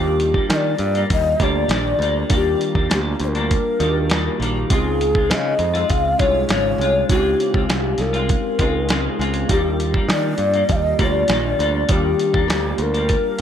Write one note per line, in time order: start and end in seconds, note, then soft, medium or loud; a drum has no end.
0.00 0.37 D#2 medium
0.00 0.34 D#3 medium
0.00 0.35 G3 medium
0.00 0.35 A#3 medium
0.00 1.00 A#3 medium
0.00 0.33 D4 medium
0.00 1.00 D4 medium
0.00 1.01 F4 medium
0.00 0.47 G4 medium
0.00 1.01 G4 medium
0.20 closed hi-hat medium
0.34 0.96 G3 soft
0.34 0.95 A#3 soft
0.34 0.94 D4 medium
0.34 kick medium
0.50 0.74 D#3 medium
0.50 0.57 D#5 medium
0.50 snare loud
0.50 closed hi-hat medium
0.56 1.07 D5 medium
0.79 1.03 G2 medium
0.79 closed hi-hat medium
0.95 1.40 G3 soft
0.95 1.41 A#3 soft
0.95 closed hi-hat soft
1.10 1.34 D#2 medium
1.10 1.45 D#5 loud
1.10 kick medium
1.10 closed hi-hat medium
1.39 1.64 D2 medium
1.39 1.70 G3 medium
1.39 2.23 A#3 medium
1.39 1.71 A#3 medium
1.39 2.23 D4 medium
1.39 1.71 D4 medium
1.39 2.23 F4 medium
1.39 2.24 G4 medium
1.39 2.31 D5 medium
1.39 kick medium
1.39 closed hi-hat medium
1.68 1.93 A#1 medium
1.68 2.00 D#3 medium
1.68 2.00 G3 medium
1.68 snare loud
1.68 closed hi-hat medium
1.72 2.01 A#3 medium
1.72 2.02 D4 medium
1.99 2.23 D2 medium
1.99 2.30 G3 medium
1.99 2.31 A#3 medium
1.99 closed hi-hat medium
2.03 2.31 D4 medium
2.29 2.54 D#2 medium
2.29 2.75 D#3 medium
2.29 2.75 G3 medium
2.29 3.40 A#3 medium
2.29 2.76 A#3 medium
2.29 3.40 D4 medium
2.29 2.74 D4 medium
2.29 3.41 F4 medium
2.29 3.41 A#4 medium
2.29 kick loud
2.29 closed hi-hat loud
2.35 2.88 G4 medium
2.61 closed hi-hat medium
2.75 2.87 D#2 medium
2.75 3.36 G3 soft
2.75 3.36 A#3 soft
2.75 3.34 D4 medium
2.75 kick medium
2.90 3.14 D2 medium
2.90 snare loud
2.90 closed hi-hat medium
2.94 3.00 G4 medium
3.20 3.56 D2 medium
3.20 closed hi-hat medium
3.24 3.29 C5 medium
3.28 4.38 A#4 medium
3.35 3.79 G3 soft
3.35 3.81 A#3 soft
3.35 3.80 D4 soft
3.35 closed hi-hat soft
3.51 kick medium
3.51 closed hi-hat medium
3.79 4.28 D#2 medium
3.79 4.09 D#3 medium
3.79 4.10 G3 medium
3.79 4.62 A#3 medium
3.79 4.11 A#3 medium
3.79 4.63 D4 medium
3.79 4.11 D4 medium
3.79 4.63 F4 medium
3.79 3.87 F#4 medium
3.79 closed hi-hat medium
3.88 4.67 G4 medium
4.10 4.39 D#3 medium
4.10 4.40 G3 medium
4.10 4.41 A#3 medium
4.10 4.41 D4 medium
4.10 snare medium
4.10 closed hi-hat medium
4.40 4.64 A#1 medium
4.40 4.69 D#3 medium
4.40 4.70 G3 medium
4.40 4.71 A#3 medium
4.40 4.71 D4 medium
4.40 closed hi-hat medium
4.69 5.31 C#2 medium
4.69 5.15 C#3 medium
4.69 5.15 G#3 medium
4.69 5.80 C4 medium
4.69 5.15 C4 medium
4.69 5.81 D#4 medium
4.69 5.81 F4 medium
4.69 5.14 F4 medium
4.69 5.32 G#4 medium
4.69 5.82 G#4 medium
4.69 kick loud
4.69 closed hi-hat medium
5.01 closed hi-hat medium
5.15 5.76 G#3 soft
5.15 5.74 C4 soft
5.15 5.72 F4 medium
5.15 kick medium
5.30 5.54 C#3 medium
5.30 5.91 D#5 medium
5.30 snare loud
5.30 closed hi-hat medium
5.59 5.83 F2 medium
5.59 closed hi-hat medium
5.74 6.19 G#3 soft
5.74 6.20 C4 soft
5.74 6.19 F4 medium
5.74 closed hi-hat soft
5.89 6.14 C#2 medium
5.89 6.21 F5 loud
5.89 kick medium
5.89 closed hi-hat medium
6.18 6.44 C2 medium
6.18 6.49 G#3 medium
6.18 7.02 C#4 medium
6.18 7.02 D#4 medium
6.18 7.03 F4 medium
6.18 7.03 G#4 medium
6.18 7.09 C#5 loud
6.18 kick medium
6.18 closed hi-hat medium
6.22 6.51 F4 medium
6.49 6.73 G#1 medium
6.49 6.79 C#3 medium
6.49 6.80 G#3 medium
6.49 6.81 F4 medium
6.49 snare loud
6.49 closed hi-hat medium
6.78 7.03 C2 medium
6.78 7.10 G#3 medium
6.78 closed hi-hat medium
6.83 7.11 F4 medium
7.08 7.33 C#2 medium
7.08 7.54 C#3 medium
7.08 7.55 G#3 medium
7.08 8.19 C4 medium
7.08 7.55 C4 medium
7.08 8.20 D#4 medium
7.08 7.16 E4 soft
7.08 7.65 G4 medium
7.08 8.21 G4 medium
7.08 kick loud
7.08 closed hi-hat medium
7.12 7.54 F4 medium
7.17 8.24 F4 medium
7.40 closed hi-hat medium
7.54 7.66 C#2 medium
7.54 8.15 G#3 soft
7.54 8.14 C4 soft
7.54 8.12 F4 soft
7.54 kick medium
7.69 7.93 C2 medium
7.69 7.76 G#4 medium
7.69 snare loud
7.69 closed hi-hat medium
7.75 8.02 G4 medium
7.98 8.35 C2 medium
7.98 9.20 A#4 medium
7.98 snare soft
7.98 closed hi-hat medium
8.13 8.59 G#3 soft
8.13 8.60 C4 soft
8.13 8.59 F4 medium
8.13 closed hi-hat soft
8.29 kick medium
8.29 closed hi-hat medium
8.58 9.07 C#2 medium
8.58 8.88 C#3 medium
8.58 8.89 G#3 medium
8.58 9.42 C4 medium
8.58 8.90 C4 medium
8.58 9.43 D#4 medium
8.58 9.43 F4 medium
8.58 8.90 F4 medium
8.58 9.43 G#4 medium
8.58 kick medium
8.58 closed hi-hat medium
8.89 9.18 C#3 medium
8.89 9.19 G#3 medium
8.89 9.20 C4 medium
8.89 9.21 F4 medium
8.89 snare loud
8.89 closed hi-hat medium
9.19 9.43 C#2 medium
9.19 9.49 C#3 medium
9.19 9.49 G#3 medium
9.19 9.50 C4 medium
9.19 9.51 F4 medium
9.19 closed hi-hat medium
9.34 closed hi-hat medium
9.47 9.97 D#2 medium
9.47 9.94 D#3 medium
9.47 9.94 G3 medium
9.47 10.59 A#3 medium
9.47 9.94 A#3 medium
9.47 10.59 D4 medium
9.47 10.60 F4 medium
9.47 10.60 G4 medium
9.47 10.06 G4 medium
9.47 kick loud
9.47 closed hi-hat medium
9.51 9.92 D4 medium
9.80 closed hi-hat medium
9.94 10.56 G3 soft
9.94 10.54 A#3 soft
9.94 10.54 D4 soft
9.94 kick medium
10.09 10.33 D#3 medium
10.09 10.73 D5 medium
10.09 snare loud
10.09 closed hi-hat medium
10.38 10.63 G2 medium
10.38 closed hi-hat medium
10.54 10.99 G3 soft
10.54 10.99 A#3 soft
10.54 closed hi-hat soft
10.69 10.93 D#2 medium
10.69 10.77 F5 medium
10.69 kick medium
10.69 closed hi-hat medium
10.76 11.01 D#5 loud
10.98 11.23 D2 medium
10.98 11.29 G3 medium
10.98 11.81 A#3 medium
10.98 11.30 A#3 medium
10.98 11.82 D4 medium
10.98 11.30 D4 medium
10.98 11.82 F4 medium
10.98 11.82 G4 medium
10.98 kick medium
10.98 closed hi-hat medium
11.02 11.93 D5 medium
11.28 11.53 A#1 medium
11.28 11.59 D#3 soft
11.28 11.59 G3 medium
11.28 11.60 A#3 medium
11.28 snare loud
11.28 closed hi-hat medium
11.32 11.61 D4 medium
11.59 11.83 D2 medium
11.59 11.89 G3 medium
11.59 11.90 A#3 medium
11.59 11.90 D4 medium
11.59 closed hi-hat medium
11.88 12.13 D#2 medium
11.88 12.34 D#3 medium
11.88 12.35 G3 medium
11.88 12.99 A#3 medium
11.88 12.34 A#3 medium
11.88 13.00 D4 medium
11.88 12.32 D4 medium
11.88 13.00 F4 medium
11.88 13.00 G4 medium
11.88 12.50 G4 medium
11.88 kick loud
11.88 closed hi-hat medium
12.19 closed hi-hat medium
12.33 12.46 D#2 medium
12.33 12.96 G3 soft
12.33 12.95 A#3 soft
12.33 12.93 D4 medium
12.33 kick medium
12.48 12.72 D2 medium
12.48 snare loud
12.48 closed hi-hat medium
12.52 12.84 G4 medium
12.78 13.15 D2 medium
12.78 closed hi-hat medium
12.82 13.41 A#4 medium
12.94 13.40 G3 soft
12.94 13.40 A#3 soft
12.94 13.39 D4 soft
12.94 closed hi-hat soft
13.09 kick medium
13.09 closed hi-hat medium